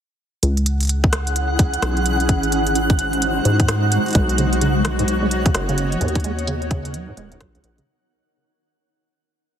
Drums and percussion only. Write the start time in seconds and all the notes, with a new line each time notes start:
0.43 closed hi-hat
0.57 closed hi-hat
0.66 closed hi-hat
0.81 closed hi-hat
0.83 closed hi-hat
0.85 closed hi-hat
0.87 closed hi-hat
0.89 closed hi-hat
1.04 kick
1.13 cross-stick, closed hi-hat
1.27 closed hi-hat
1.36 closed hi-hat
1.59 kick, closed hi-hat
1.74 closed hi-hat
1.82 cross-stick, closed hi-hat
1.97 closed hi-hat
2.06 closed hi-hat
2.20 closed hi-hat
2.29 kick, closed hi-hat
2.43 closed hi-hat
2.52 closed hi-hat
2.67 closed hi-hat
2.75 closed hi-hat
2.90 kick, closed hi-hat
2.99 closed hi-hat
3.13 closed hi-hat
3.22 closed hi-hat
3.45 closed hi-hat
3.60 kick, closed hi-hat
3.68 cross-stick, closed hi-hat
3.92 closed hi-hat
4.06 closed hi-hat
4.08 closed hi-hat
4.11 closed hi-hat
4.13 closed hi-hat
4.15 kick, closed hi-hat
4.29 closed hi-hat
4.38 closed hi-hat
4.53 closed hi-hat
4.61 closed hi-hat
4.85 cross-stick, closed hi-hat
4.99 closed hi-hat
5.08 closed hi-hat
5.31 closed hi-hat
5.46 kick, closed hi-hat
5.55 cross-stick, closed hi-hat
5.69 closed hi-hat
5.78 closed hi-hat
5.92 closed hi-hat
6.01 closed hi-hat
6.08 closed hi-hat
6.15 kick, closed hi-hat
6.20 closed hi-hat
6.24 closed hi-hat
6.39 closed hi-hat
6.47 closed hi-hat
6.62 closed hi-hat
6.71 kick, closed hi-hat
6.85 closed hi-hat
6.94 closed hi-hat
7.17 closed hi-hat
7.32 closed hi-hat
7.41 kick, cross-stick, closed hi-hat
7.55 closed hi-hat
7.64 closed hi-hat
7.78 closed hi-hat